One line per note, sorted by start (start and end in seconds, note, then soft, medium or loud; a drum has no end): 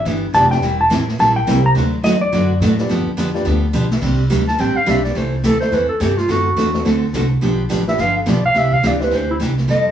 0.05 0.33 G1 medium
0.05 0.25 E3 medium
0.05 0.25 B3 medium
0.05 0.25 D4 medium
0.05 0.25 G4 medium
0.05 brush sweep soft
0.05 snare soft
0.34 0.62 F1 medium
0.34 0.45 E3 medium
0.34 0.45 B3 medium
0.34 0.45 D4 medium
0.34 0.63 D4 medium
0.34 0.63 E4 medium
0.34 0.45 G4 medium
0.34 0.63 G4 medium
0.34 0.63 B4 medium
0.34 0.63 D5 medium
0.34 0.51 A5 medium
0.34 snare medium
0.34 hi-hat pedal medium
0.51 0.78 G5 loud
0.51 snare soft
0.62 0.90 E1 medium
0.62 0.82 E3 medium
0.62 0.82 G3 medium
0.62 0.82 C4 medium
0.62 0.82 E4 medium
0.62 0.82 A#4 medium
0.62 brush sweep soft
0.62 snare soft
0.81 0.91 A5 loud
0.90 1.19 A1 medium
0.90 1.01 E3 medium
0.90 1.02 G3 medium
0.90 1.02 C4 medium
0.90 1.02 E4 medium
0.90 1.02 A#4 medium
0.90 snare medium
0.90 hi-hat pedal medium
1.08 snare soft
1.19 1.47 A#1 medium
1.19 1.39 E3 medium
1.19 1.39 G3 medium
1.19 1.39 C4 medium
1.19 1.39 E4 medium
1.19 1.39 A#4 medium
1.19 1.36 A5 medium
1.19 brush sweep medium
1.19 snare soft
1.36 1.63 G5 medium
1.47 1.75 C2 medium
1.47 1.58 E3 medium
1.47 1.58 G3 medium
1.47 1.58 C4 medium
1.47 1.76 C4 medium
1.47 1.59 E4 medium
1.47 1.77 E4 medium
1.47 1.77 G4 medium
1.47 1.59 A#4 medium
1.47 1.76 A#4 medium
1.47 1.77 C5 medium
1.47 snare medium
1.47 hi-hat pedal medium
1.66 1.72 A#5 loud
1.75 2.03 D2 medium
1.75 1.95 D3 medium
1.75 1.95 F#3 medium
1.75 1.95 A3 medium
1.75 1.95 D4 medium
1.75 1.95 F#4 medium
1.75 brush sweep medium
1.75 snare soft
2.03 2.31 E2 medium
2.03 2.15 D3 medium
2.03 2.15 F#3 medium
2.03 2.15 A3 medium
2.03 2.15 D4 medium
2.03 2.15 F#4 medium
2.03 2.21 D#5 medium
2.03 snare medium
2.03 hi-hat pedal medium
2.21 2.58 D5 medium
2.32 2.60 F#2 medium
2.32 2.52 D3 medium
2.32 2.52 F#3 medium
2.32 2.52 A3 medium
2.32 2.52 D4 medium
2.32 2.52 F#4 medium
2.32 brush sweep soft
2.32 snare soft
2.60 2.88 A2 loud
2.60 2.72 D3 medium
2.60 2.72 F#3 medium
2.60 2.72 A3 medium
2.60 2.72 D4 medium
2.60 2.73 F#4 medium
2.60 snare medium
2.60 hi-hat pedal medium
2.78 2.89 D4 medium
2.78 2.89 F4 medium
2.78 2.89 G4 medium
2.78 2.89 B4 medium
2.78 2.89 D5 medium
2.78 snare soft
2.89 3.05 G2 medium
2.89 3.09 D3 medium
2.89 3.09 F3 medium
2.89 3.09 B3 medium
2.89 3.09 D4 medium
2.89 3.09 G4 medium
2.89 brush sweep soft
2.89 snare medium
3.06 muted upright bass stroke soft
3.17 3.45 F2 medium
3.17 3.28 D3 medium
3.17 3.28 F3 medium
3.17 3.28 B3 medium
3.17 3.29 D4 medium
3.17 3.29 G4 medium
3.17 snare medium
3.17 hi-hat pedal medium
3.34 3.44 D4 medium
3.34 3.45 F4 medium
3.34 3.45 G4 medium
3.34 3.45 B4 medium
3.34 3.45 D5 medium
3.34 snare soft
3.45 3.73 D2 loud
3.45 3.65 D3 medium
3.45 3.65 F3 medium
3.45 3.65 B3 medium
3.45 3.65 D4 medium
3.45 3.65 G4 medium
3.45 brush sweep medium
3.45 snare medium
3.73 4.01 B1 medium
3.73 3.85 D3 medium
3.73 3.85 F3 medium
3.73 3.85 B3 medium
3.73 3.85 D4 medium
3.73 3.85 G4 medium
3.73 hi-hat pedal medium
3.91 snare medium
4.02 4.30 C2 medium
4.02 4.21 C3 medium
4.02 4.21 G3 medium
4.02 4.22 C4 medium
4.02 4.22 D4 medium
4.02 4.22 G4 medium
4.02 brush sweep medium
4.02 kick medium
4.02 snare soft
4.02 crash medium
4.30 4.58 D2 medium
4.30 4.41 C3 medium
4.30 4.41 G3 medium
4.30 4.41 C4 medium
4.30 4.42 D4 medium
4.30 4.42 G4 medium
4.30 snare medium
4.30 hi-hat pedal medium
4.48 4.62 A5 loud
4.48 snare soft
4.58 4.75 A1 medium
4.58 4.78 C3 medium
4.58 4.78 G3 medium
4.58 4.78 C4 medium
4.58 4.78 D4 medium
4.58 4.79 G4 medium
4.58 4.78 G5 medium
4.58 brush sweep soft
4.58 snare soft
4.75 4.92 F5 loud
4.75 muted upright bass stroke soft
4.86 5.15 B1 medium
4.86 4.98 C3 medium
4.86 4.98 G3 medium
4.86 4.98 C4 medium
4.86 5.16 C4 medium
4.86 4.98 D4 medium
4.86 5.16 D4 medium
4.86 4.98 G4 medium
4.86 5.16 G4 medium
4.86 5.16 C5 medium
4.86 5.16 D5 medium
4.86 snare medium
4.86 hi-hat pedal medium
4.90 5.04 E5 medium
5.05 5.19 D5 medium
5.05 snare soft
5.15 5.43 C2 medium
5.15 5.35 C3 medium
5.15 5.35 E3 medium
5.15 5.35 A3 medium
5.15 5.35 E4 medium
5.15 5.35 A4 medium
5.15 5.33 C5 medium
5.15 brush sweep soft
5.15 snare soft
5.33 5.47 E4 soft
5.44 5.71 D2 medium
5.44 5.55 C3 medium
5.44 5.55 E3 medium
5.44 5.55 A3 medium
5.44 5.55 E4 medium
5.44 5.55 A4 medium
5.44 5.60 A4 medium
5.44 snare medium
5.44 hi-hat pedal medium
5.60 5.72 A3 medium
5.60 5.72 C4 medium
5.60 5.72 E4 medium
5.60 5.72 A4 medium
5.60 5.75 C5 loud
5.60 5.72 C5 medium
5.60 snare soft
5.72 5.88 E2 medium
5.72 5.92 C3 medium
5.72 5.92 E3 medium
5.72 5.92 A3 medium
5.72 5.92 E4 medium
5.72 5.92 A4 medium
5.72 5.88 B4 medium
5.72 brush sweep medium
5.72 snare soft
5.89 6.03 A4 medium
5.89 muted upright bass stroke soft
6.00 6.28 G2 medium
6.00 6.11 C3 medium
6.00 6.12 E3 medium
6.00 6.12 A3 medium
6.00 6.12 E4 medium
6.00 6.19 G4 medium
6.00 6.12 A4 medium
6.00 snare medium
6.00 hi-hat pedal medium
6.18 6.33 F4 loud
6.18 snare soft
6.28 6.56 F#2 medium
6.28 6.48 D3 medium
6.28 6.48 A3 medium
6.28 6.48 C4 medium
6.28 6.48 F#4 medium
6.28 6.87 F#4 medium
6.28 6.48 A4 medium
6.28 brush sweep medium
6.28 snare soft
6.57 6.84 E2 medium
6.57 6.68 D3 medium
6.57 6.68 A3 medium
6.57 6.68 C4 medium
6.57 6.68 F#4 medium
6.57 6.68 A4 medium
6.57 snare medium
6.57 hi-hat pedal medium
6.74 6.84 C4 medium
6.74 6.85 D4 medium
6.74 6.85 F#4 medium
6.74 6.85 A4 medium
6.74 6.85 C5 medium
6.74 snare soft
6.85 7.13 D2 medium
6.85 7.05 D3 medium
6.85 7.05 A3 medium
6.85 7.05 C4 medium
6.85 7.05 F#4 medium
6.85 7.05 A4 medium
6.85 brush sweep soft
6.85 snare medium
7.13 7.41 C2 medium
7.13 7.25 D3 medium
7.13 7.25 A3 medium
7.13 7.25 C4 medium
7.13 7.25 F#4 medium
7.13 7.25 A4 medium
7.13 snare medium
7.13 hi-hat pedal medium
7.41 7.69 B1 medium
7.41 7.61 D3 medium
7.41 7.61 F3 medium
7.41 7.61 B3 medium
7.41 7.61 D4 medium
7.41 7.62 G4 medium
7.41 brush sweep medium
7.41 snare soft
7.69 7.98 A1 medium
7.69 7.81 D3 medium
7.69 7.81 F3 medium
7.69 7.81 B3 medium
7.69 7.81 D4 medium
7.69 7.81 G4 medium
7.69 snare medium
7.69 hi-hat pedal medium
7.88 7.98 B3 medium
7.88 7.98 D4 medium
7.88 7.98 F4 medium
7.88 7.98 G4 medium
7.88 7.98 B4 medium
7.88 8.02 E5 loud
7.88 snare soft
7.98 8.26 G1 medium
7.98 8.18 D3 medium
7.98 8.18 F3 medium
7.98 8.18 B3 medium
7.98 8.18 D4 medium
7.98 8.18 G4 medium
7.98 8.17 F5 loud
7.98 brush sweep medium
7.98 snare soft
8.17 8.30 A4 medium
8.26 8.54 B1 medium
8.26 8.37 D3 medium
8.26 8.37 F3 medium
8.26 8.37 B3 medium
8.26 8.38 D4 medium
8.26 8.38 G4 medium
8.26 8.45 D5 medium
8.26 snare medium
8.26 hi-hat pedal medium
8.45 8.60 F5 loud
8.54 8.82 C2 medium
8.54 8.74 C3 medium
8.54 8.74 E3 medium
8.54 8.75 D4 medium
8.54 8.75 G4 medium
8.54 8.75 E5 loud
8.54 brush sweep medium
8.54 snare soft
8.72 8.89 F5 loud
8.72 kick medium
8.83 9.11 C#2 medium
8.83 8.94 C3 medium
8.83 8.94 E3 medium
8.83 8.94 D4 medium
8.83 8.94 G4 medium
8.83 snare medium
8.83 hi-hat pedal medium
8.87 9.02 D5 loud
9.00 9.10 C4 medium
9.00 9.11 D4 medium
9.00 9.11 E4 medium
9.00 9.10 G4 medium
9.00 9.17 B4 medium
9.00 9.11 C5 medium
9.00 snare soft
9.11 9.39 D2 medium
9.11 9.31 C3 medium
9.11 9.31 E3 medium
9.11 9.31 D4 medium
9.11 9.31 G4 medium
9.11 brush sweep medium
9.11 snare soft
9.16 9.30 C5 medium
9.31 9.37 E4 medium
9.40 9.67 C2 medium
9.40 9.51 C3 medium
9.40 9.51 E3 medium
9.40 9.51 D4 medium
9.40 9.51 G4 medium
9.40 snare medium
9.40 hi-hat pedal medium
9.58 snare soft
9.68 9.91 F2 medium
9.68 9.87 F3 medium
9.68 9.87 G3 medium
9.68 9.87 C4 medium
9.68 9.88 G4 medium
9.68 9.88 A4 medium
9.68 9.91 D#5 loud
9.68 brush sweep medium
9.68 snare soft